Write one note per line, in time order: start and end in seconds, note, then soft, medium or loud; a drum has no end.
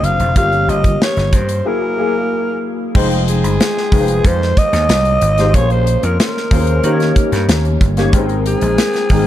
0.00 0.17 F#1 medium
0.00 0.37 D3 medium
0.00 0.36 A#3 medium
0.00 0.38 C4 medium
0.00 0.38 F#4 medium
0.00 closed hi-hat medium
0.05 0.37 F5 loud
0.19 0.33 F1 medium
0.19 closed hi-hat medium
0.36 0.64 G1 loud
0.36 1.53 F3 medium
0.36 1.54 A#3 medium
0.36 1.54 C#4 medium
0.36 1.54 G4 medium
0.36 0.71 F5 loud
0.36 kick loud
0.36 closed hi-hat loud
0.52 closed hi-hat soft
0.68 0.96 G1 medium
0.68 1.01 D#5 loud
0.68 closed hi-hat medium
0.84 kick medium
0.84 closed hi-hat medium
1.02 1.37 C#5 medium
1.02 snare loud
1.17 1.31 G1 medium
1.17 snare soft
1.17 closed hi-hat soft
1.33 1.60 G2 loud
1.33 1.68 C5 medium
1.33 kick medium
1.33 closed hi-hat medium
1.49 closed hi-hat medium
1.65 1.95 F#3 medium
1.65 1.95 A#3 medium
1.65 1.95 E4 medium
1.65 1.95 G#4 medium
1.65 2.63 A#4 medium
1.97 2.86 F#3 medium
1.97 2.86 A#3 medium
1.97 2.86 E4 medium
1.97 2.86 G#4 medium
2.95 3.44 F1 loud
2.95 3.83 G#3 medium
2.95 3.83 D#4 medium
2.95 3.83 F4 medium
2.95 3.84 C5 medium
2.95 3.84 G5 medium
2.95 kick loud
2.95 crash loud
3.11 closed hi-hat soft
3.28 4.28 G#4 medium
3.28 closed hi-hat medium
3.44 3.57 G1 medium
3.44 closed hi-hat medium
3.60 snare loud
3.60 closed hi-hat medium
3.77 snare soft
3.92 4.20 F1 loud
3.92 5.10 G#3 medium
3.92 5.10 D#4 medium
3.92 5.10 F4 medium
3.92 3.99 B4 medium
3.92 5.10 G5 medium
3.92 kick medium
3.92 open hi-hat medium
4.00 5.14 C5 medium
4.08 closed hi-hat medium
4.24 4.52 F2 loud
4.24 4.60 C5 loud
4.24 kick loud
4.24 closed hi-hat medium
4.42 snare soft
4.57 5.57 D#5 loud
4.57 kick medium
4.57 closed hi-hat medium
4.73 4.87 D#2 medium
4.73 snare soft
4.73 closed hi-hat medium
4.89 5.17 C2 medium
4.89 snare loud
4.89 closed hi-hat medium
5.05 closed hi-hat soft
5.21 5.54 G#1 medium
5.21 closed hi-hat medium
5.38 5.53 G#3 medium
5.38 5.53 D#4 medium
5.38 5.53 F4 medium
5.38 5.53 G4 medium
5.38 5.53 C5 medium
5.38 snare soft
5.38 closed hi-hat medium
5.54 5.95 A#1 loud
5.54 6.42 A#3 medium
5.54 6.42 C#4 medium
5.54 6.42 F4 medium
5.54 6.43 G#4 medium
5.54 6.43 C5 medium
5.54 5.71 C#5 loud
5.54 kick loud
5.54 closed hi-hat loud
5.70 6.06 C5 loud
5.70 closed hi-hat soft
5.87 closed hi-hat medium
6.03 6.17 F2 medium
6.03 6.20 A#4 medium
6.03 closed hi-hat medium
6.20 7.45 A#4 medium
6.20 snare loud
6.20 closed hi-hat medium
6.37 snare soft
6.51 6.79 D#2 loud
6.51 6.82 A#3 medium
6.51 6.82 C#4 medium
6.51 6.84 F4 medium
6.51 6.84 G#4 medium
6.51 6.83 C5 medium
6.51 kick medium
6.51 open hi-hat medium
6.67 closed hi-hat medium
6.84 7.11 D#3 loud
6.84 7.87 A#3 medium
6.84 7.87 C#4 medium
6.84 7.87 D#4 medium
6.84 7.87 G4 medium
6.84 6.91 C5 medium
6.84 closed hi-hat medium
6.92 7.91 C#5 medium
7.00 snare soft
7.00 closed hi-hat soft
7.16 kick medium
7.16 closed hi-hat medium
7.32 7.46 G2 medium
7.32 snare soft
7.32 closed hi-hat medium
7.48 7.76 D#2 loud
7.48 snare loud
7.48 closed hi-hat medium
7.65 closed hi-hat soft
7.81 8.09 G1 medium
7.81 kick loud
7.81 closed hi-hat medium
7.97 8.12 A#3 medium
7.97 8.12 C#4 medium
7.97 8.12 D#4 medium
7.97 8.12 G4 medium
7.97 8.12 C#5 loud
7.97 snare soft
7.97 closed hi-hat medium
8.13 8.54 G#1 loud
8.13 9.01 G#3 medium
8.13 9.01 C4 medium
8.13 9.01 D#4 medium
8.13 9.02 A#4 loud
8.13 9.02 G5 medium
8.13 kick loud
8.13 closed hi-hat loud
8.29 closed hi-hat soft
8.46 9.27 G#4 loud
8.46 closed hi-hat medium
8.61 8.76 A#1 medium
8.61 closed hi-hat medium
8.78 snare loud
8.78 closed hi-hat medium
8.93 snare soft
8.93 closed hi-hat soft
9.09 9.27 G#1 loud
9.09 9.27 G#3 medium
9.09 9.17 B3 medium
9.09 9.27 D#4 medium
9.09 9.27 A#4 medium
9.09 9.27 G5 medium
9.09 kick medium
9.09 open hi-hat medium
9.17 9.27 C4 medium